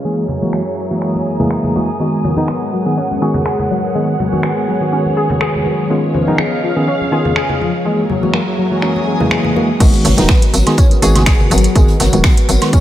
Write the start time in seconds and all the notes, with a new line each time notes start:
Already playing: G#4 C#5
0.04 E3 F#3 G#3 A#3 G#4 A#4 C#5 E5
0.19 A#5
0.28 low conga
0.42 E3 G#3 A#3 F#4, high conga
0.53 finger snap
0.91 E3 G#3 A#3 F#4 G#5 D#6
1.02 finger snap
1.15 high conga
1.39 E3 G#3 A#3 G#4, low conga
1.51 finger snap
1.64 low conga
1.75 E3 G#3 A#3 F#4, high conga
1.99 D#3 G#3 B3 F#4 G#4 B4 F#5
2.19 C#5
2.24 F#3, low conga
2.36 D#3 G#3 B3 D#4, high conga
2.48 B3, finger snap
2.73 F#3
2.86 D#3 G#3 B3 G#4 F#5
2.97 C#4
3.11 high conga
3.21 D#3 G#3 B3 F#4 G#4
3.34 low conga
3.46 G#4, finger snap
3.59 low conga
3.71 F#3, high conga
3.95 D#3 G#3 B3 G#4 G#5
4.19 F#3, low conga
4.32 D#3 G#3 B3 F#4, high conga
4.43 B3, finger snap
4.68 F#3
4.80 D#3 G#3 B3 F#4
4.93 C#4
5.06 high conga
5.17 G#4
5.30 low conga
5.41 G#4, finger snap
5.55 low conga
5.66 F#3, high conga
5.90 D#3 G#3 B3 C#4 F4 G#4 D#5 F5
6.14 F3, low conga
6.23 F5
6.27 D#3 B3 C#4 D#4, high conga
6.38 B3, finger snap
6.63 F3
6.76 D#3 B3 C#4 G#4
6.88 C#4
7.01 high conga
7.12 D#3 B3 C#4 F4 G#4
7.25 low conga
7.36 G#4, finger snap
7.49 low conga
7.61 F3, high conga
7.85 E3 F#3 G#3 A#3 G#4 A#4 C#5 E5
7.99 A#4
8.10 F#3, low conga
8.22 E3 G#3 A#3 F#4, high conga
8.34 A#3, finger snap
8.58 F#3
8.71 E3 G#3 A#3 F#4 G#5 D#6
8.82 C#4, finger snap, swell
8.96 high conga
9.07 G#3
9.20 E3 G#3 A#3 G#4, low conga
9.31 G#3, finger snap
9.44 low conga
9.56 E3 G#3 A#3 F#4, high conga
9.80 G#1 D#3 G#3 B3 F#4 A#4 B4, kick, closed hi-hat, crash, tambourine
9.93 closed hi-hat, tambourine
10.05 G#1 F#3, open hi-hat, tambourine, low conga
10.17 D#1 D#3 G#3 B3 D#4, snare, closed hi-hat, tambourine, high conga
10.29 B3, finger snap, kick, snare, tambourine
10.42 closed hi-hat, tambourine
10.54 G#1 F#3, open hi-hat, tambourine
10.66 D#3 G#3 B3 G#4, snare, closed hi-hat, tambourine, high woodblock
10.78 C#4, kick, closed hi-hat, tambourine
10.91 closed hi-hat, tambourine, high conga
11.02 G#1 D#3 G#3 B3 F#4 G#4, open hi-hat, tambourine
11.15 snare, closed hi-hat, tambourine, low conga, high woodblock
11.26 G#4, finger snap, kick, snare, closed hi-hat, tambourine
11.40 tambourine, low conga
11.50 G#1 F#3, open hi-hat, tambourine, high conga
11.58 closed hi-hat
11.64 closed hi-hat, tambourine
11.75 G#1 D#3 G#3 B3 G#4, kick, closed hi-hat, tambourine
11.88 closed hi-hat, tambourine
12.00 G#1 F#3, snare, open hi-hat, tambourine, low conga
12.13 D#1 D#3 G#3 B3 F#4, closed hi-hat, tambourine, high conga
12.24 B3, finger snap, kick, snare, tambourine
12.37 closed hi-hat, tambourine
12.49 G#1 F#3, open hi-hat, tambourine
12.61 D#3 G#3 B3 F#4, snare, closed hi-hat, tambourine, high woodblock
12.73 C#4, kick, closed hi-hat, tambourine